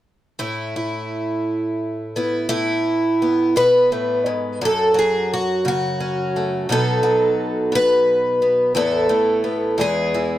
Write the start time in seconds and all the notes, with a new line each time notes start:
0.39 A2 E4
0.76 E4
2.16 B3 E4
2.49 A2 E4
3.22 B3
3.56 B2 B4
3.92 A2
4.26 G#2
4.61 F#2 A4
4.94 F#3
4.99 G#4
5.34 F#4
5.65 C#3 F#4
6.00 C#4
6.36 A3
6.69 B2 F#3 B3 D#4 A4
7.03 F#3
7.72 B2 B4
8.42 B3
8.75 E2 A2 B3 E4 A4
9.09 A2
9.44 B3
9.78 E2 E3 G#3 B3 G#4
10.14 E3